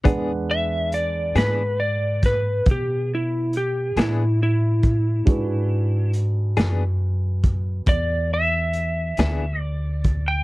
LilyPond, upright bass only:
\new Staff \with { instrumentName = "Upright bass" } { \clef bass \time 12/8 \key e \mixolydian \tempo 4. = 46 e,4. gis,4. b,4. a,4. | gis,4. fis,4. e,4. d,4. | }